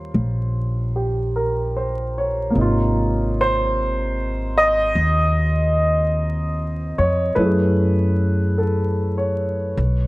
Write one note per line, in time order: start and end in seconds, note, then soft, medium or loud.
0.00 0.10 D#2 medium
0.00 2.55 G3 soft
0.00 2.49 A#3 soft
0.00 2.57 C#4 soft
0.00 2.58 F4 soft
0.00 1.33 C5 medium
0.14 2.51 A#1 medium
0.96 1.59 G4 soft
1.36 2.14 A#4 soft
1.76 2.40 C5 soft
2.18 2.80 C#5 soft
2.50 7.36 C3 soft
2.50 7.34 A#3 soft
2.55 4.92 G#1 medium
2.55 7.38 D#4 soft
2.61 7.39 F4 soft
3.41 4.56 C5 medium
4.58 7.06 D#5 medium
4.95 6.94 D#2 medium
6.98 7.34 F2 medium
6.98 7.37 C#5 medium
7.35 9.73 F#2 medium
7.35 9.77 A3 soft
7.35 9.78 C#4 soft
7.35 9.78 E4 soft
7.35 10.07 B4 medium
7.41 9.79 G#4 soft
8.58 9.55 A4 soft
9.18 10.04 C#5 soft
9.77 10.07 B1 medium